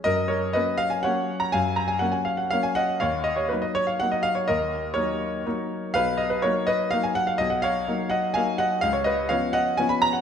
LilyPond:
<<
  \new Staff \with { instrumentName = "Grand piano" } { \time 3/4 \key fis \major \tempo 4 = 124 <ais' dis''>8 <ais' cis''>8 <b' dis''>8 eis''16 gis''16 <cis'' fis''>8. ais''16 | <eis'' gis''>8 ais''16 gis''16 fis''16 gis''16 eis''16 fis''16 eis''16 gis''16 <dis'' fis''>8 | <cis'' eis''>8 dis''16 cis''16 b'16 dis''16 cis''16 eis''16 fis''16 dis''16 eis''16 cis''16 | <ais' dis''>4 <ais' cis''>2 |
<b' eis''>8 dis''16 b'16 <ais' cis''>8 <b' dis''>8 eis''16 gis''16 fis''16 eis''16 | dis''16 fis''16 <cis'' eis''>4 <dis'' fis''>8 <eis'' gis''>8 <dis'' fis''>8 | eis''16 cis''16 <b' dis''>8 <cis'' eis''>8 <dis'' fis''>8 gis''16 b''16 ais''16 fis''16 | }
  \new Staff \with { instrumentName = "Grand piano" } { \time 3/4 \key fis \major fis,4 <fis ais cis'>4 <fis ais cis'>4 | fis,4 <fis ais cis'>4 <fis ais cis'>4 | dis,4 <fis ais dis'>4 <fis ais dis'>4 | dis,4 <fis ais dis'>4 <fis ais dis'>4 |
b,,4 <fis ais dis'>4 <fis ais dis'>4 | b,,4 <fis ais dis'>4 <fis ais dis'>4 | cis,4 <eis b cis'>4 <eis b cis'>4 | }
>>